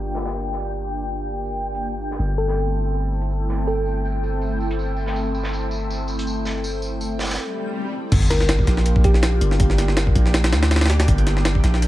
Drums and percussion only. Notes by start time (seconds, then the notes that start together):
0.15 snare, tambourine
0.25 snare, tambourine
0.34 tambourine
0.52 snare, tambourine
0.71 tambourine
0.90 tambourine
1.08 tambourine
1.27 tambourine
1.45 tambourine
1.64 tambourine
1.75 closed hi-hat
1.82 tambourine
2.02 tambourine
2.11 snare
2.20 tambourine
2.38 tambourine
2.48 snare
2.57 tambourine
2.75 tambourine
2.93 tambourine
3.13 tambourine
3.22 closed hi-hat
3.30 tambourine
3.48 snare, tambourine
3.67 tambourine
3.86 tambourine
4.05 tambourine
4.23 tambourine
4.42 tambourine
4.60 tambourine
4.71 closed hi-hat
4.79 tambourine
4.96 tambourine
5.06 snare
5.16 tambourine
5.34 tambourine
5.43 snare
5.53 tambourine
5.71 tambourine
5.90 tambourine
6.08 tambourine
6.19 closed hi-hat
6.27 tambourine
6.45 snare, tambourine
6.64 tambourine
6.82 tambourine
7.01 tambourine
7.19 snare, tambourine
7.23 snare, tambourine
7.29 snare, tambourine
7.34 snare, tambourine
8.12 kick, closed hi-hat, crash
8.22 closed hi-hat
8.31 snare, closed hi-hat
8.40 snare
8.49 snare, closed hi-hat
8.59 kick
8.67 snare, closed hi-hat
8.77 snare
8.86 closed hi-hat
8.96 kick
9.04 kick, closed hi-hat
9.14 snare
9.23 snare, closed hi-hat
9.41 closed hi-hat
9.51 snare
9.60 kick, closed hi-hat
9.70 snare
9.78 snare, closed hi-hat
9.88 snare
9.97 snare, closed hi-hat
10.07 kick
10.15 kick, closed hi-hat
10.26 snare
10.34 snare, closed hi-hat
10.44 snare, closed hi-hat
10.52 snare, closed hi-hat
10.63 snare, closed hi-hat
10.71 snare, closed hi-hat
10.76 snare, closed hi-hat
10.81 snare, closed hi-hat
10.86 snare, closed hi-hat
10.90 snare, closed hi-hat
11.00 snare, closed hi-hat
11.08 kick, closed hi-hat
11.18 closed hi-hat
11.27 snare, closed hi-hat
11.37 snare
11.45 snare, closed hi-hat
11.55 kick
11.64 snare, closed hi-hat
11.74 snare
11.82 closed hi-hat